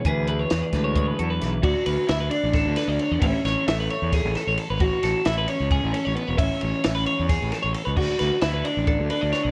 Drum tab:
CC |-------|-------|-------|-------|
RD |-------|xxxxxxx|xxxxxxx|xxxxxxx|
HH |xxxxxxx|-------|-------|-------|
SD |--oo--o|--o-oo-|-oo-oo-|-oo----|
BD |o--oo--|o---o--|o---o--|o---o--|

CC |-------|x------|
RD |xxxxxxx|-xxxxxx|
HH |-------|-------|
SD |--o-oo-|-oo---o|
BD |o---o--|o---o--|